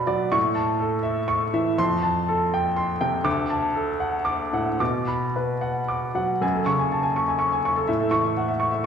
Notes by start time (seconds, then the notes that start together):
Already playing: B2 F#4 D5 F#5 B5
0.07 F#3 D5
0.32 A2 C#6
0.55 A5
0.80 A4
1.03 E5
1.28 C#6
1.54 E3 E5
1.78 F2 C6
2.03 A5
2.28 A4
2.54 G5
2.76 C6
3.01 C3 G5
3.24 D2 D6
3.50 A5
3.75 A4
4.00 F#5
4.25 D6
4.53 A2 F#5
4.80 B2 D6
5.08 B5
5.36 B4
5.61 F#5
5.88 D6
6.15 F#3 F#5
6.41 F#2 G#5
6.54 A4
6.66 C#3 C#6
6.79 G#5
6.92 A5
7.03 G#5
7.16 C#6
7.28 G#5
7.39 C#6
7.52 G#5
7.65 C#6
7.76 A4
7.88 A2 E5
8.00 A4
8.11 E3 C#6
8.24 E5
8.37 F#5
8.48 E5
8.60 C#6
8.71 E5